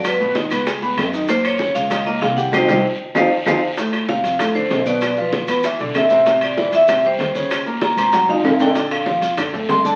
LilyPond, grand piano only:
\new Staff \with { instrumentName = "Grand piano" } { \time 4/4 \key f \mixolydian \tempo 4 = 193 <ges ges' ges''>8 <ces ces' ces''>8 <ees ees' ees''>8 <ces' ces'' ces'''>8 <aes aes' aes''>8 <ces' ces'' ces'''>4 <ees ees' ees''>8 | <bes, bes bes'>4 <des des' des''>4 <ees ees' ees''>8 <bes bes' bes''>4 <g g' g''>8 | <c' ees' g'>8 <c' ees' g'>8 r4 <c' ees' f'>8 r8 <c' ees' f'>8 r8 | \key f \major <a, a a'>4 <c c' c''>4 <a, a a'>8 <d d' d''>4 <b, b b'>8~ |
<b, b b'>8 <f f' f''>4 <b b' b''>8 <e e' e''>8 <d d' d''>4 <c c' c''>8 | <c c' c''>4 <e e' e''>4 <c c' c''>8 <g g' g''>4 <des des' des''>8~ | <des des' des''>8 <bes bes' bes''>4 <c' c'' c'''>8 <ges ges' ges''>8 <ees ees' ees''>4 <d d' d''>8 | <d d' d''>4 <f f' f''>4 <d d' d''>8 <a a' a''>4 <d d' d''>8 | }